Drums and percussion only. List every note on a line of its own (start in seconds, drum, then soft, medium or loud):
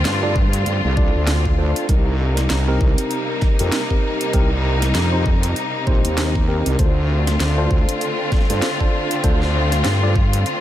0.05 snare loud
0.05 closed hi-hat soft
0.36 kick loud
0.53 closed hi-hat medium
0.66 closed hi-hat medium
0.97 kick loud
1.27 snare loud
1.27 closed hi-hat medium
1.46 kick medium
1.76 closed hi-hat medium
1.89 kick loud
1.89 closed hi-hat soft
2.37 snare soft
2.37 closed hi-hat medium
2.50 snare loud
2.50 closed hi-hat soft
2.81 kick loud
2.98 closed hi-hat medium
3.11 closed hi-hat medium
3.41 kick loud
3.41 snare soft
3.59 closed hi-hat medium
3.72 snare loud
3.72 closed hi-hat soft
3.90 kick medium
4.21 closed hi-hat medium
4.33 kick loud
4.33 closed hi-hat soft
4.82 snare soft
4.82 closed hi-hat medium
4.95 snare loud
4.95 closed hi-hat soft
5.26 kick loud
5.43 closed hi-hat medium
5.56 closed hi-hat soft
5.87 kick loud
6.05 closed hi-hat medium
6.18 snare loud
6.18 closed hi-hat soft
6.35 kick medium
6.66 closed hi-hat medium
6.79 kick loud
6.79 closed hi-hat soft
7.27 snare medium
7.27 closed hi-hat medium
7.40 snare loud
7.40 closed hi-hat soft
7.71 kick loud
7.89 closed hi-hat medium
8.01 closed hi-hat medium
8.32 kick loud
8.32 snare soft
8.36 snare soft
8.41 snare soft
8.45 snare soft
8.50 snare soft
8.50 closed hi-hat medium
8.53 snare soft
8.56 snare soft
8.59 snare soft
8.62 snare loud
8.62 closed hi-hat soft
8.81 kick medium
9.11 closed hi-hat medium
9.24 kick loud
9.24 closed hi-hat soft
9.42 snare soft
9.72 snare medium
9.72 closed hi-hat medium
9.84 snare loud
9.84 closed hi-hat medium
10.16 kick loud
10.33 closed hi-hat medium
10.46 closed hi-hat medium